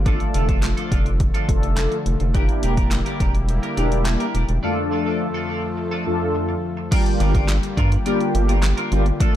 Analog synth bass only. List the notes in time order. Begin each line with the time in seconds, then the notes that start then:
Already playing: G1
0.35 F1
0.92 F1
1.49 F1
2.06 F1
2.20 F1
2.63 E1
3.20 E1
3.78 E1
4.35 E1
4.49 E1
7.20 G1
7.77 G2
8.35 G1
8.92 G1